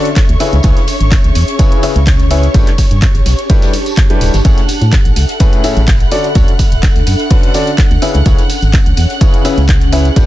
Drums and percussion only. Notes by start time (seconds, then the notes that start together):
0.05 closed hi-hat
0.16 kick, snare, clap, closed hi-hat, ride, tambourine
0.29 closed hi-hat
0.40 open hi-hat, ride, tambourine
0.53 closed hi-hat
0.63 kick, closed hi-hat, ride, tambourine
0.77 snare, closed hi-hat
0.87 open hi-hat, ride, tambourine
1.01 closed hi-hat
1.11 kick, snare, clap, closed hi-hat, ride, tambourine
1.24 closed hi-hat
1.35 open hi-hat, ride, tambourine
1.48 closed hi-hat
1.59 kick, closed hi-hat, ride, tambourine
1.72 closed hi-hat
1.83 open hi-hat, ride, tambourine
1.96 closed hi-hat
2.06 kick, snare, clap, closed hi-hat, ride, tambourine
2.19 snare, closed hi-hat
2.31 snare, open hi-hat, ride, tambourine
2.43 closed hi-hat
2.54 kick, closed hi-hat, ride, tambourine
2.67 clap, closed hi-hat
2.78 kick, open hi-hat, ride, tambourine
2.91 closed hi-hat
3.02 kick, snare, clap, closed hi-hat, ride, tambourine
3.15 closed hi-hat
3.26 snare, open hi-hat, ride, tambourine
3.39 closed hi-hat
3.50 kick, closed hi-hat, ride, tambourine
3.62 snare, closed hi-hat, tambourine
3.73 open hi-hat, ride
3.86 closed hi-hat, tambourine
3.97 kick, snare, clap, closed hi-hat, ride, tambourine
4.10 snare, closed hi-hat
4.20 snare, open hi-hat, ride, tambourine
4.34 snare, closed hi-hat, tambourine
4.45 kick, closed hi-hat, ride, tambourine
4.57 snare, closed hi-hat, tambourine
4.68 open hi-hat, ride, tambourine
4.81 closed hi-hat, tambourine
4.92 kick, snare, clap, closed hi-hat, ride, tambourine
5.05 closed hi-hat, tambourine
5.16 open hi-hat, ride, tambourine
5.29 closed hi-hat, tambourine
5.40 kick, closed hi-hat, ride, tambourine
5.53 closed hi-hat, tambourine
5.64 open hi-hat, ride, tambourine
5.77 closed hi-hat, tambourine
5.87 kick, snare, clap, closed hi-hat, ride, tambourine
6.00 snare, closed hi-hat, tambourine
6.12 snare, open hi-hat, ride, tambourine
6.24 closed hi-hat, tambourine
6.35 kick, closed hi-hat, ride, tambourine
6.48 closed hi-hat, tambourine
6.59 kick, open hi-hat, ride, tambourine
6.72 closed hi-hat, tambourine
6.83 kick, snare, clap, closed hi-hat, ride, tambourine
6.95 closed hi-hat, tambourine
7.07 open hi-hat, ride, tambourine
7.20 closed hi-hat, tambourine
7.30 kick, closed hi-hat, open hi-hat, ride, tambourine
7.43 closed hi-hat, tambourine
7.54 snare, open hi-hat, ride, tambourine
7.67 closed hi-hat, tambourine
7.78 kick, snare, clap, closed hi-hat, ride, tambourine
7.91 closed hi-hat, tambourine
8.02 open hi-hat, ride, tambourine
8.14 closed hi-hat, tambourine
8.26 kick, closed hi-hat, ride, tambourine
8.38 snare, closed hi-hat, tambourine
8.49 open hi-hat, ride, tambourine
8.62 closed hi-hat, tambourine
8.73 kick, snare, clap, closed hi-hat, ride, tambourine
8.86 closed hi-hat, tambourine
8.97 open hi-hat, ride, tambourine
9.10 closed hi-hat, tambourine
9.21 kick, closed hi-hat, ride, tambourine
9.34 closed hi-hat, tambourine
9.45 open hi-hat, ride, tambourine
9.58 closed hi-hat, tambourine
9.68 kick, snare, clap, closed hi-hat, ride, tambourine
9.81 snare, closed hi-hat, tambourine
9.93 snare, open hi-hat, ride, tambourine
10.05 closed hi-hat, tambourine
10.16 kick, closed hi-hat, ride, tambourine